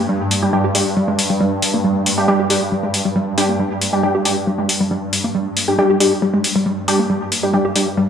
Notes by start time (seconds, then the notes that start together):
Already playing: G2
0.09 G3
0.31 open hi-hat
0.42 G3 D4 G4
0.53 G3 D4 G4
0.64 G4
0.75 G3 D4 G4, open hi-hat
0.97 G3
1.08 G#3
1.19 open hi-hat
1.30 G3
1.41 G3
1.62 open hi-hat
1.74 A#3
1.84 G3
2.06 open hi-hat
2.18 G3 D4 G4
2.28 G3 D4 G4
2.40 G4
2.50 G3 D4 G4, open hi-hat
2.72 G3
2.83 G#3
2.94 open hi-hat
3.05 G3
3.16 G3
3.38 G3 D4 G4, open hi-hat
3.49 A#3
3.60 G3
3.81 open hi-hat
3.93 G3 D4 G4
4.03 G3 D4 G4
4.15 G4
4.25 G3 D4 G4, open hi-hat
4.47 G3
4.59 G#3
4.69 open hi-hat
4.80 G3
4.91 G3
5.13 open hi-hat
5.24 A#3
5.35 G3
5.57 open hi-hat
5.68 G3 D4 G4
5.78 G3 D4 G4
5.90 G4
6.00 G3 D4 G4, open hi-hat
6.22 G3
6.34 G#3
6.44 open hi-hat
6.56 G3
6.66 G3
6.88 G3 D4 G4, open hi-hat
6.99 A#3
7.10 G3
7.32 open hi-hat
7.43 G3 D4 G4
7.54 G3 D4 G4
7.65 G4
7.76 G3 D4 G4, open hi-hat
7.97 G3